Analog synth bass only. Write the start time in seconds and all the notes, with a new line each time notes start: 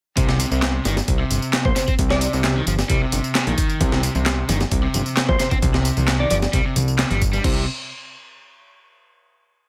0.17 C2
0.51 C2
0.85 G1
1.08 C2
1.31 G1
1.65 A#1
1.99 C2
2.33 C2
2.67 G1
2.90 C2
3.13 G1
3.47 A#1
3.81 C2
4.15 C2
4.49 G1
4.71 C2
4.94 G1
5.29 A#1
5.62 C2
5.97 C2
6.31 G1
6.53 C2
6.76 C2
7.11 G1
7.44 C2